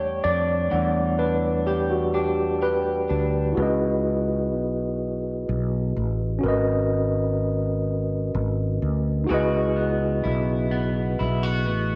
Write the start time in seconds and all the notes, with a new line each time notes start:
Already playing: E2 E3 G3 A3 D4 G4 C#5 F#5
0.24 F2 D4 D5
0.70 E2 E3 G3 A3 D4 F#5
1.19 D4 B4
1.67 G4
1.90 F#4
2.14 D4 G4
2.62 G4 B4
3.09 D2 D4
3.53 E4 F#4
3.57 C#2 G#4 B4
3.62 D#5
4.53 B1
5.49 B1
5.96 A1
6.39 C#4 F#4
6.43 G#1 A#4 B4
6.48 D#5
8.35 G#1
8.82 D2
9.24 D#4 F#4
9.29 C#2 C#3 E4 F#4 G#4 B4
9.34 D#5
9.77 B3
10.24 B1 E4
10.71 B3
11.19 B1 E4
11.43 F#4
11.66 A1 B3